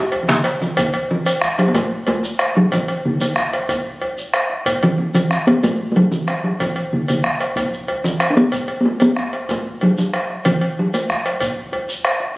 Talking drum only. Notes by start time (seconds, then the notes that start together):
0.23 E3
0.29 D3
0.62 E3
0.78 D3
1.11 E3
1.59 F#3
1.68 B3
1.75 A3
2.08 A3
2.57 F#3
2.73 E3
3.05 D3
3.21 D3
4.83 E3
4.98 D3
5.14 E3
5.47 B3
5.64 A3
5.92 A3
5.96 F#3
6.12 E3
6.44 F#3
6.60 E3
6.93 D3
7.10 D3
8.04 E3
8.30 D4
8.37 B3
8.81 B3
8.85 A3
9.02 B3
9.51 A3
9.83 F#3
9.98 F#3
10.46 E3
10.79 F#3
10.94 A3